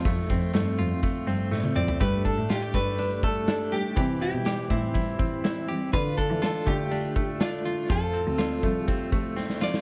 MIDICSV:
0, 0, Header, 1, 7, 480
1, 0, Start_track
1, 0, Tempo, 490597
1, 51, Time_signature, 4, 2, 24, 8
1, 9599, End_track
2, 0, Start_track
2, 0, Title_t, "Clean electric guitar"
2, 0, Program_c, 0, 27
2, 1721, Note_on_c, 0, 74, 94
2, 1946, Note_off_c, 0, 74, 0
2, 1962, Note_on_c, 0, 71, 90
2, 2197, Note_off_c, 0, 71, 0
2, 2201, Note_on_c, 0, 69, 80
2, 2447, Note_on_c, 0, 67, 76
2, 2450, Note_off_c, 0, 69, 0
2, 2685, Note_on_c, 0, 71, 89
2, 2693, Note_off_c, 0, 67, 0
2, 3131, Note_off_c, 0, 71, 0
2, 3169, Note_on_c, 0, 69, 88
2, 3653, Note_on_c, 0, 67, 79
2, 3661, Note_off_c, 0, 69, 0
2, 4117, Note_off_c, 0, 67, 0
2, 4129, Note_on_c, 0, 67, 79
2, 4598, Note_off_c, 0, 67, 0
2, 4602, Note_on_c, 0, 64, 67
2, 5525, Note_off_c, 0, 64, 0
2, 5806, Note_on_c, 0, 71, 100
2, 6037, Note_off_c, 0, 71, 0
2, 6041, Note_on_c, 0, 69, 82
2, 6274, Note_off_c, 0, 69, 0
2, 6286, Note_on_c, 0, 69, 88
2, 6533, Note_on_c, 0, 67, 95
2, 6534, Note_off_c, 0, 69, 0
2, 7248, Note_off_c, 0, 67, 0
2, 7252, Note_on_c, 0, 65, 82
2, 7745, Note_off_c, 0, 65, 0
2, 7746, Note_on_c, 0, 69, 80
2, 8676, Note_off_c, 0, 69, 0
2, 8676, Note_on_c, 0, 67, 80
2, 9139, Note_off_c, 0, 67, 0
2, 9426, Note_on_c, 0, 74, 89
2, 9599, Note_off_c, 0, 74, 0
2, 9599, End_track
3, 0, Start_track
3, 0, Title_t, "Reed electric piano"
3, 0, Program_c, 1, 4
3, 0, Control_c, 1, 64, 127
3, 65, Control_c, 1, 64, 0
3, 1950, Note_on_c, 1, 57, 57
3, 1964, Note_on_c, 1, 62, 57
3, 1978, Note_on_c, 1, 67, 64
3, 2129, Control_c, 1, 64, 127
3, 3604, Note_off_c, 1, 57, 0
3, 3611, Note_off_c, 1, 62, 0
3, 3618, Note_off_c, 1, 67, 0
3, 3645, Note_on_c, 1, 57, 49
3, 3658, Note_on_c, 1, 62, 43
3, 3660, Note_on_c, 1, 67, 50
3, 3881, Note_on_c, 1, 72, 58
3, 3885, Note_off_c, 1, 57, 0
3, 3892, Note_off_c, 1, 62, 0
3, 3893, Note_off_c, 1, 67, 0
3, 3896, Control_c, 1, 64, 0
3, 3901, Note_on_c, 1, 64, 56
3, 3908, Note_on_c, 1, 67, 68
3, 4077, Control_c, 1, 64, 127
3, 5766, Note_off_c, 1, 72, 0
3, 5776, Note_off_c, 1, 64, 0
3, 5780, Note_off_c, 1, 67, 0
3, 5796, Note_on_c, 1, 62, 64
3, 5806, Note_on_c, 1, 77, 55
3, 5820, Control_c, 1, 64, 0
3, 5824, Note_on_c, 1, 69, 64
3, 5965, Control_c, 1, 64, 127
3, 7685, Note_off_c, 1, 62, 0
3, 7690, Note_off_c, 1, 77, 0
3, 7699, Note_off_c, 1, 69, 0
3, 7713, Note_on_c, 1, 60, 57
3, 7728, Note_on_c, 1, 65, 54
3, 7739, Control_c, 1, 64, 0
3, 7742, Note_on_c, 1, 69, 68
3, 7906, Control_c, 1, 64, 127
3, 9599, Note_off_c, 1, 60, 0
3, 9599, Note_off_c, 1, 65, 0
3, 9599, Note_off_c, 1, 69, 0
3, 9599, End_track
4, 0, Start_track
4, 0, Title_t, "Clean electric guitar"
4, 0, Program_c, 2, 27
4, 0, Note_on_c, 2, 60, 64
4, 0, Note_on_c, 2, 65, 72
4, 98, Note_off_c, 2, 65, 0
4, 100, Note_off_c, 2, 60, 0
4, 295, Note_on_c, 2, 60, 55
4, 769, Note_on_c, 2, 65, 63
4, 1007, Note_on_c, 2, 57, 58
4, 1234, Note_off_c, 2, 60, 0
4, 1478, Note_off_c, 2, 57, 0
4, 1482, Note_on_c, 2, 57, 58
4, 1718, Note_on_c, 2, 60, 58
4, 1948, Note_off_c, 2, 57, 0
4, 1961, Note_off_c, 2, 65, 0
4, 2010, Note_off_c, 2, 60, 0
4, 2199, Note_on_c, 2, 62, 53
4, 2444, Note_on_c, 2, 65, 60
4, 2567, Note_off_c, 2, 65, 0
4, 2567, Note_on_c, 2, 67, 53
4, 2913, Note_off_c, 2, 62, 0
4, 3403, Note_on_c, 2, 62, 53
4, 3629, Note_off_c, 2, 67, 0
4, 3884, Note_on_c, 2, 67, 61
4, 3932, Note_off_c, 2, 62, 0
4, 4124, Note_on_c, 2, 64, 57
4, 4352, Note_off_c, 2, 67, 0
4, 4364, Note_on_c, 2, 67, 67
4, 4823, Note_off_c, 2, 64, 0
4, 5324, Note_on_c, 2, 64, 55
4, 5551, Note_off_c, 2, 67, 0
4, 5562, Note_on_c, 2, 67, 65
4, 5800, Note_off_c, 2, 67, 0
4, 5853, Note_off_c, 2, 64, 0
4, 6044, Note_on_c, 2, 62, 55
4, 6281, Note_on_c, 2, 65, 67
4, 6753, Note_off_c, 2, 62, 0
4, 7247, Note_on_c, 2, 62, 57
4, 7484, Note_off_c, 2, 65, 0
4, 7776, Note_off_c, 2, 62, 0
4, 7959, Note_on_c, 2, 60, 54
4, 8203, Note_on_c, 2, 65, 63
4, 8674, Note_off_c, 2, 60, 0
4, 9162, Note_on_c, 2, 60, 52
4, 9394, Note_off_c, 2, 65, 0
4, 9599, Note_off_c, 2, 60, 0
4, 9599, End_track
5, 0, Start_track
5, 0, Title_t, "Steel-string acoustic guitar"
5, 0, Program_c, 3, 25
5, 48, Note_on_c, 3, 53, 67
5, 57, Note_on_c, 3, 57, 66
5, 66, Note_on_c, 3, 60, 70
5, 73, Note_on_c, 3, 65, 66
5, 521, Note_off_c, 3, 53, 0
5, 530, Note_off_c, 3, 60, 0
5, 533, Note_on_c, 3, 53, 82
5, 535, Note_off_c, 3, 57, 0
5, 536, Note_off_c, 3, 65, 0
5, 539, Note_on_c, 3, 57, 79
5, 542, Note_on_c, 3, 60, 93
5, 548, Note_on_c, 3, 65, 101
5, 875, Note_off_c, 3, 65, 0
5, 881, Note_off_c, 3, 60, 0
5, 886, Note_on_c, 3, 65, 56
5, 889, Note_off_c, 3, 53, 0
5, 890, Note_off_c, 3, 57, 0
5, 893, Note_on_c, 3, 60, 51
5, 902, Note_on_c, 3, 57, 47
5, 1236, Note_off_c, 3, 57, 0
5, 1238, Note_on_c, 3, 53, 57
5, 1242, Note_off_c, 3, 60, 0
5, 1246, Note_off_c, 3, 65, 0
5, 1248, Note_on_c, 3, 57, 58
5, 1254, Note_on_c, 3, 60, 70
5, 1259, Note_on_c, 3, 65, 61
5, 1584, Note_off_c, 3, 65, 0
5, 1596, Note_on_c, 3, 65, 55
5, 1598, Note_off_c, 3, 60, 0
5, 1602, Note_off_c, 3, 53, 0
5, 1607, Note_off_c, 3, 57, 0
5, 1610, Note_on_c, 3, 60, 54
5, 1617, Note_on_c, 3, 57, 46
5, 1960, Note_off_c, 3, 57, 0
5, 1960, Note_off_c, 3, 65, 0
5, 1962, Note_on_c, 3, 55, 58
5, 1968, Note_off_c, 3, 60, 0
5, 1972, Note_on_c, 3, 57, 55
5, 1978, Note_on_c, 3, 62, 64
5, 1980, Note_on_c, 3, 67, 57
5, 2313, Note_off_c, 3, 67, 0
5, 2323, Note_off_c, 3, 55, 0
5, 2325, Note_on_c, 3, 67, 53
5, 2328, Note_off_c, 3, 57, 0
5, 2328, Note_off_c, 3, 62, 0
5, 2339, Note_on_c, 3, 62, 49
5, 2346, Note_on_c, 3, 57, 47
5, 2685, Note_off_c, 3, 67, 0
5, 2686, Note_off_c, 3, 57, 0
5, 2689, Note_on_c, 3, 55, 51
5, 2692, Note_off_c, 3, 62, 0
5, 2698, Note_on_c, 3, 57, 63
5, 2704, Note_on_c, 3, 62, 64
5, 2707, Note_on_c, 3, 67, 63
5, 2913, Note_off_c, 3, 55, 0
5, 2922, Note_off_c, 3, 57, 0
5, 2925, Note_on_c, 3, 55, 60
5, 2928, Note_off_c, 3, 62, 0
5, 2934, Note_on_c, 3, 57, 59
5, 2936, Note_off_c, 3, 67, 0
5, 2940, Note_on_c, 3, 62, 61
5, 2948, Note_on_c, 3, 67, 63
5, 3147, Note_off_c, 3, 55, 0
5, 3158, Note_on_c, 3, 55, 52
5, 3159, Note_off_c, 3, 57, 0
5, 3167, Note_off_c, 3, 62, 0
5, 3171, Note_off_c, 3, 67, 0
5, 3171, Note_on_c, 3, 57, 48
5, 3179, Note_on_c, 3, 62, 61
5, 3183, Note_on_c, 3, 67, 62
5, 3635, Note_off_c, 3, 55, 0
5, 3637, Note_off_c, 3, 57, 0
5, 3639, Note_on_c, 3, 55, 61
5, 3640, Note_off_c, 3, 62, 0
5, 3649, Note_on_c, 3, 57, 59
5, 3652, Note_on_c, 3, 62, 65
5, 3654, Note_off_c, 3, 67, 0
5, 3658, Note_on_c, 3, 67, 58
5, 3878, Note_off_c, 3, 55, 0
5, 3884, Note_on_c, 3, 52, 54
5, 3886, Note_off_c, 3, 57, 0
5, 3889, Note_off_c, 3, 62, 0
5, 3889, Note_on_c, 3, 55, 59
5, 3892, Note_off_c, 3, 67, 0
5, 3895, Note_on_c, 3, 60, 55
5, 3903, Note_on_c, 3, 64, 59
5, 4236, Note_off_c, 3, 64, 0
5, 4245, Note_off_c, 3, 52, 0
5, 4248, Note_off_c, 3, 55, 0
5, 4248, Note_on_c, 3, 64, 55
5, 4250, Note_off_c, 3, 60, 0
5, 4271, Note_on_c, 3, 55, 47
5, 4602, Note_off_c, 3, 55, 0
5, 4603, Note_on_c, 3, 52, 55
5, 4607, Note_off_c, 3, 64, 0
5, 4613, Note_on_c, 3, 55, 52
5, 4622, Note_on_c, 3, 60, 56
5, 4624, Note_on_c, 3, 64, 71
5, 4825, Note_off_c, 3, 52, 0
5, 4833, Note_off_c, 3, 55, 0
5, 4837, Note_on_c, 3, 52, 57
5, 4839, Note_off_c, 3, 60, 0
5, 4845, Note_on_c, 3, 55, 60
5, 4846, Note_off_c, 3, 64, 0
5, 4851, Note_on_c, 3, 60, 62
5, 4858, Note_on_c, 3, 64, 58
5, 5071, Note_off_c, 3, 52, 0
5, 5078, Note_off_c, 3, 55, 0
5, 5082, Note_on_c, 3, 52, 54
5, 5085, Note_off_c, 3, 60, 0
5, 5090, Note_on_c, 3, 55, 52
5, 5092, Note_off_c, 3, 64, 0
5, 5097, Note_on_c, 3, 60, 58
5, 5104, Note_on_c, 3, 64, 57
5, 5552, Note_off_c, 3, 52, 0
5, 5562, Note_off_c, 3, 55, 0
5, 5564, Note_on_c, 3, 52, 64
5, 5572, Note_off_c, 3, 60, 0
5, 5574, Note_on_c, 3, 55, 58
5, 5575, Note_off_c, 3, 64, 0
5, 5584, Note_on_c, 3, 60, 72
5, 5587, Note_on_c, 3, 64, 66
5, 5797, Note_off_c, 3, 52, 0
5, 5801, Note_on_c, 3, 50, 59
5, 5803, Note_off_c, 3, 55, 0
5, 5807, Note_on_c, 3, 57, 62
5, 5809, Note_off_c, 3, 60, 0
5, 5813, Note_on_c, 3, 62, 60
5, 5817, Note_off_c, 3, 64, 0
5, 5821, Note_on_c, 3, 65, 65
5, 6164, Note_off_c, 3, 50, 0
5, 6166, Note_off_c, 3, 62, 0
5, 6167, Note_off_c, 3, 57, 0
5, 6174, Note_off_c, 3, 65, 0
5, 6177, Note_on_c, 3, 62, 47
5, 6185, Note_on_c, 3, 57, 43
5, 6510, Note_off_c, 3, 57, 0
5, 6511, Note_on_c, 3, 50, 55
5, 6517, Note_off_c, 3, 62, 0
5, 6522, Note_on_c, 3, 57, 58
5, 6529, Note_on_c, 3, 62, 59
5, 6536, Note_on_c, 3, 65, 59
5, 6751, Note_off_c, 3, 50, 0
5, 6759, Note_off_c, 3, 57, 0
5, 6763, Note_on_c, 3, 50, 58
5, 6764, Note_off_c, 3, 62, 0
5, 6770, Note_on_c, 3, 57, 58
5, 6772, Note_off_c, 3, 65, 0
5, 6776, Note_on_c, 3, 62, 60
5, 6784, Note_on_c, 3, 65, 65
5, 6993, Note_off_c, 3, 50, 0
5, 7001, Note_off_c, 3, 57, 0
5, 7003, Note_off_c, 3, 62, 0
5, 7005, Note_on_c, 3, 50, 48
5, 7010, Note_off_c, 3, 65, 0
5, 7012, Note_on_c, 3, 57, 54
5, 7014, Note_on_c, 3, 62, 57
5, 7022, Note_on_c, 3, 65, 53
5, 7471, Note_off_c, 3, 50, 0
5, 7483, Note_on_c, 3, 50, 56
5, 7486, Note_off_c, 3, 62, 0
5, 7490, Note_off_c, 3, 57, 0
5, 7494, Note_on_c, 3, 57, 57
5, 7498, Note_on_c, 3, 62, 59
5, 7501, Note_off_c, 3, 65, 0
5, 7505, Note_on_c, 3, 65, 65
5, 7721, Note_off_c, 3, 57, 0
5, 7726, Note_off_c, 3, 50, 0
5, 7731, Note_on_c, 3, 53, 51
5, 7733, Note_off_c, 3, 62, 0
5, 7733, Note_on_c, 3, 57, 59
5, 7737, Note_off_c, 3, 65, 0
5, 7739, Note_on_c, 3, 60, 57
5, 7747, Note_on_c, 3, 65, 62
5, 8079, Note_off_c, 3, 65, 0
5, 8090, Note_off_c, 3, 53, 0
5, 8090, Note_off_c, 3, 60, 0
5, 8091, Note_off_c, 3, 57, 0
5, 8091, Note_on_c, 3, 65, 52
5, 8101, Note_on_c, 3, 60, 45
5, 8109, Note_on_c, 3, 57, 42
5, 8444, Note_off_c, 3, 57, 0
5, 8449, Note_on_c, 3, 53, 60
5, 8450, Note_off_c, 3, 65, 0
5, 8455, Note_off_c, 3, 60, 0
5, 8456, Note_on_c, 3, 57, 73
5, 8468, Note_on_c, 3, 65, 68
5, 8469, Note_on_c, 3, 60, 75
5, 8674, Note_off_c, 3, 53, 0
5, 8684, Note_off_c, 3, 57, 0
5, 8685, Note_on_c, 3, 53, 64
5, 8690, Note_off_c, 3, 60, 0
5, 8695, Note_on_c, 3, 57, 73
5, 8696, Note_off_c, 3, 65, 0
5, 8701, Note_on_c, 3, 60, 69
5, 8708, Note_on_c, 3, 65, 67
5, 8911, Note_off_c, 3, 53, 0
5, 8918, Note_off_c, 3, 57, 0
5, 8923, Note_on_c, 3, 53, 56
5, 8925, Note_off_c, 3, 60, 0
5, 8930, Note_off_c, 3, 65, 0
5, 8930, Note_on_c, 3, 57, 59
5, 8937, Note_on_c, 3, 60, 60
5, 8941, Note_on_c, 3, 65, 62
5, 9381, Note_off_c, 3, 53, 0
5, 9392, Note_on_c, 3, 53, 57
5, 9399, Note_off_c, 3, 60, 0
5, 9402, Note_off_c, 3, 65, 0
5, 9403, Note_off_c, 3, 57, 0
5, 9407, Note_on_c, 3, 57, 51
5, 9410, Note_on_c, 3, 60, 56
5, 9414, Note_on_c, 3, 65, 58
5, 9599, Note_off_c, 3, 53, 0
5, 9599, Note_off_c, 3, 57, 0
5, 9599, Note_off_c, 3, 60, 0
5, 9599, Note_off_c, 3, 65, 0
5, 9599, End_track
6, 0, Start_track
6, 0, Title_t, "Cello"
6, 0, Program_c, 4, 42
6, 52, Note_on_c, 4, 41, 95
6, 255, Note_off_c, 4, 41, 0
6, 293, Note_on_c, 4, 41, 93
6, 495, Note_off_c, 4, 41, 0
6, 533, Note_on_c, 4, 43, 89
6, 766, Note_off_c, 4, 43, 0
6, 772, Note_on_c, 4, 41, 92
6, 1177, Note_off_c, 4, 41, 0
6, 1241, Note_on_c, 4, 43, 80
6, 1447, Note_off_c, 4, 43, 0
6, 1483, Note_on_c, 4, 45, 75
6, 1716, Note_off_c, 4, 45, 0
6, 1722, Note_on_c, 4, 41, 78
6, 1927, Note_off_c, 4, 41, 0
6, 1966, Note_on_c, 4, 43, 101
6, 2271, Note_off_c, 4, 43, 0
6, 2327, Note_on_c, 4, 45, 86
6, 2632, Note_off_c, 4, 45, 0
6, 2679, Note_on_c, 4, 43, 78
6, 3603, Note_off_c, 4, 43, 0
6, 3883, Note_on_c, 4, 48, 94
6, 4190, Note_off_c, 4, 48, 0
6, 4243, Note_on_c, 4, 47, 81
6, 4550, Note_off_c, 4, 47, 0
6, 4603, Note_on_c, 4, 45, 89
6, 5526, Note_off_c, 4, 45, 0
6, 5808, Note_on_c, 4, 50, 95
6, 6161, Note_off_c, 4, 50, 0
6, 6167, Note_on_c, 4, 52, 85
6, 6518, Note_off_c, 4, 52, 0
6, 6524, Note_on_c, 4, 50, 92
6, 7447, Note_off_c, 4, 50, 0
6, 7727, Note_on_c, 4, 41, 94
6, 8034, Note_off_c, 4, 41, 0
6, 8091, Note_on_c, 4, 38, 87
6, 8437, Note_off_c, 4, 38, 0
6, 8443, Note_on_c, 4, 36, 79
6, 9367, Note_off_c, 4, 36, 0
6, 9599, End_track
7, 0, Start_track
7, 0, Title_t, "Drums"
7, 52, Note_on_c, 9, 36, 117
7, 52, Note_on_c, 9, 49, 92
7, 149, Note_off_c, 9, 36, 0
7, 150, Note_off_c, 9, 49, 0
7, 292, Note_on_c, 9, 36, 73
7, 292, Note_on_c, 9, 42, 65
7, 390, Note_off_c, 9, 36, 0
7, 390, Note_off_c, 9, 42, 0
7, 524, Note_on_c, 9, 42, 106
7, 537, Note_on_c, 9, 38, 91
7, 622, Note_off_c, 9, 42, 0
7, 635, Note_off_c, 9, 38, 0
7, 767, Note_on_c, 9, 42, 58
7, 865, Note_off_c, 9, 42, 0
7, 1007, Note_on_c, 9, 42, 96
7, 1010, Note_on_c, 9, 36, 84
7, 1105, Note_off_c, 9, 42, 0
7, 1108, Note_off_c, 9, 36, 0
7, 1242, Note_on_c, 9, 42, 72
7, 1340, Note_off_c, 9, 42, 0
7, 1488, Note_on_c, 9, 38, 49
7, 1586, Note_off_c, 9, 38, 0
7, 1601, Note_on_c, 9, 48, 60
7, 1699, Note_off_c, 9, 48, 0
7, 1724, Note_on_c, 9, 45, 78
7, 1822, Note_off_c, 9, 45, 0
7, 1842, Note_on_c, 9, 43, 83
7, 1940, Note_off_c, 9, 43, 0
7, 1962, Note_on_c, 9, 42, 82
7, 1964, Note_on_c, 9, 36, 101
7, 2060, Note_off_c, 9, 42, 0
7, 2062, Note_off_c, 9, 36, 0
7, 2201, Note_on_c, 9, 42, 61
7, 2204, Note_on_c, 9, 36, 68
7, 2298, Note_off_c, 9, 42, 0
7, 2302, Note_off_c, 9, 36, 0
7, 2435, Note_on_c, 9, 42, 108
7, 2448, Note_on_c, 9, 38, 94
7, 2533, Note_off_c, 9, 42, 0
7, 2546, Note_off_c, 9, 38, 0
7, 2681, Note_on_c, 9, 36, 74
7, 2684, Note_on_c, 9, 42, 53
7, 2779, Note_off_c, 9, 36, 0
7, 2782, Note_off_c, 9, 42, 0
7, 2918, Note_on_c, 9, 42, 90
7, 3016, Note_off_c, 9, 42, 0
7, 3161, Note_on_c, 9, 42, 68
7, 3162, Note_on_c, 9, 36, 87
7, 3258, Note_off_c, 9, 42, 0
7, 3260, Note_off_c, 9, 36, 0
7, 3401, Note_on_c, 9, 42, 74
7, 3405, Note_on_c, 9, 38, 106
7, 3499, Note_off_c, 9, 42, 0
7, 3503, Note_off_c, 9, 38, 0
7, 3641, Note_on_c, 9, 42, 64
7, 3739, Note_off_c, 9, 42, 0
7, 3880, Note_on_c, 9, 42, 75
7, 3883, Note_on_c, 9, 36, 103
7, 3978, Note_off_c, 9, 42, 0
7, 3980, Note_off_c, 9, 36, 0
7, 4125, Note_on_c, 9, 42, 64
7, 4223, Note_off_c, 9, 42, 0
7, 4353, Note_on_c, 9, 42, 99
7, 4366, Note_on_c, 9, 38, 93
7, 4451, Note_off_c, 9, 42, 0
7, 4464, Note_off_c, 9, 38, 0
7, 4601, Note_on_c, 9, 36, 77
7, 4607, Note_on_c, 9, 42, 53
7, 4699, Note_off_c, 9, 36, 0
7, 4705, Note_off_c, 9, 42, 0
7, 4838, Note_on_c, 9, 42, 95
7, 4844, Note_on_c, 9, 36, 83
7, 4936, Note_off_c, 9, 42, 0
7, 4942, Note_off_c, 9, 36, 0
7, 5082, Note_on_c, 9, 36, 87
7, 5084, Note_on_c, 9, 42, 65
7, 5180, Note_off_c, 9, 36, 0
7, 5182, Note_off_c, 9, 42, 0
7, 5327, Note_on_c, 9, 42, 68
7, 5331, Note_on_c, 9, 38, 114
7, 5424, Note_off_c, 9, 42, 0
7, 5429, Note_off_c, 9, 38, 0
7, 5567, Note_on_c, 9, 42, 69
7, 5665, Note_off_c, 9, 42, 0
7, 5807, Note_on_c, 9, 36, 103
7, 5808, Note_on_c, 9, 42, 83
7, 5905, Note_off_c, 9, 36, 0
7, 5906, Note_off_c, 9, 42, 0
7, 6050, Note_on_c, 9, 36, 69
7, 6054, Note_on_c, 9, 42, 65
7, 6147, Note_off_c, 9, 36, 0
7, 6152, Note_off_c, 9, 42, 0
7, 6282, Note_on_c, 9, 42, 101
7, 6295, Note_on_c, 9, 38, 97
7, 6380, Note_off_c, 9, 42, 0
7, 6393, Note_off_c, 9, 38, 0
7, 6524, Note_on_c, 9, 36, 85
7, 6525, Note_on_c, 9, 42, 52
7, 6622, Note_off_c, 9, 36, 0
7, 6622, Note_off_c, 9, 42, 0
7, 6765, Note_on_c, 9, 42, 92
7, 6863, Note_off_c, 9, 42, 0
7, 7005, Note_on_c, 9, 42, 73
7, 7006, Note_on_c, 9, 36, 84
7, 7102, Note_off_c, 9, 42, 0
7, 7104, Note_off_c, 9, 36, 0
7, 7243, Note_on_c, 9, 42, 75
7, 7247, Note_on_c, 9, 38, 112
7, 7340, Note_off_c, 9, 42, 0
7, 7344, Note_off_c, 9, 38, 0
7, 7488, Note_on_c, 9, 42, 63
7, 7586, Note_off_c, 9, 42, 0
7, 7723, Note_on_c, 9, 42, 81
7, 7728, Note_on_c, 9, 36, 110
7, 7820, Note_off_c, 9, 42, 0
7, 7826, Note_off_c, 9, 36, 0
7, 7969, Note_on_c, 9, 42, 62
7, 8067, Note_off_c, 9, 42, 0
7, 8196, Note_on_c, 9, 42, 95
7, 8210, Note_on_c, 9, 38, 91
7, 8294, Note_off_c, 9, 42, 0
7, 8307, Note_off_c, 9, 38, 0
7, 8445, Note_on_c, 9, 36, 79
7, 8448, Note_on_c, 9, 42, 53
7, 8543, Note_off_c, 9, 36, 0
7, 8546, Note_off_c, 9, 42, 0
7, 8685, Note_on_c, 9, 42, 94
7, 8690, Note_on_c, 9, 36, 82
7, 8783, Note_off_c, 9, 42, 0
7, 8788, Note_off_c, 9, 36, 0
7, 8927, Note_on_c, 9, 36, 90
7, 8929, Note_on_c, 9, 42, 72
7, 9024, Note_off_c, 9, 36, 0
7, 9027, Note_off_c, 9, 42, 0
7, 9169, Note_on_c, 9, 38, 51
7, 9267, Note_off_c, 9, 38, 0
7, 9291, Note_on_c, 9, 38, 59
7, 9389, Note_off_c, 9, 38, 0
7, 9410, Note_on_c, 9, 38, 75
7, 9508, Note_off_c, 9, 38, 0
7, 9529, Note_on_c, 9, 38, 77
7, 9599, Note_off_c, 9, 38, 0
7, 9599, End_track
0, 0, End_of_file